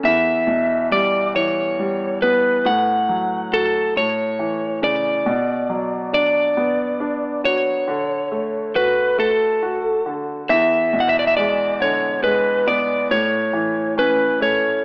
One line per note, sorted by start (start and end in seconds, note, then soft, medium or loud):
0.03 2.61 E2 medium
0.03 0.88 E5 medium
0.47 2.17 B2 soft
0.91 1.78 G3 soft
0.91 1.35 D5 medium
1.35 2.61 E3 soft
1.35 2.18 C#5 medium
1.79 2.63 G3 medium
2.22 2.65 B3 soft
2.22 2.67 B4 medium
2.65 3.92 A2 medium
2.65 3.55 F#5 medium
3.09 3.93 F#3 soft
3.53 3.95 F#4 soft
3.53 3.93 A4 medium
3.96 5.23 A2 medium
3.96 4.80 C#5 medium
4.39 5.24 E3 soft
4.82 5.25 C#3 soft
4.82 6.13 D5 medium
5.26 7.83 B2 medium
5.70 7.40 F#3 soft
6.13 6.99 D4 soft
6.13 7.40 D5 medium
6.57 7.84 B3 soft
7.00 7.85 D4 medium
7.44 7.86 F#4 soft
7.44 8.71 C#5 medium
7.88 10.04 D3 medium
8.32 9.16 A3 soft
8.75 9.61 F#4 medium
8.75 9.19 B4 medium
9.18 10.45 A3 soft
9.18 10.13 A4 medium
9.62 10.47 F#4 medium
10.06 10.48 D3 medium
10.49 13.06 E2 medium
10.49 11.01 E5 medium
10.93 12.63 B2 soft
11.00 11.09 F#5 medium
11.09 11.18 E5 medium
11.19 11.27 D5 medium
11.27 11.36 E5 medium
11.37 12.22 G#3 medium
11.37 11.81 D5 medium
11.80 13.06 D3 medium
11.80 12.23 C#5 medium
12.24 13.08 G#3 medium
12.24 12.68 B4 medium
12.67 13.09 B3 medium
12.67 13.08 D5 medium
13.11 14.85 A2 medium
13.11 13.94 C#5 medium
13.53 14.85 E3 soft
13.98 14.83 C#4 medium
13.98 14.38 B4 medium
14.41 14.85 A3 soft
14.41 14.85 C#5 medium